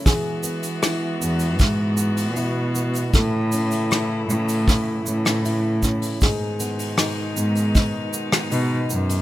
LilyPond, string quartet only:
\new Staff \with { instrumentName = "String quartet" } { \clef bass \time 4/4 \key a \lydian \tempo 4 = 78 <e gis b fis'>1 | <cis e a e'>1 | <b, dis gis dis'>1 | }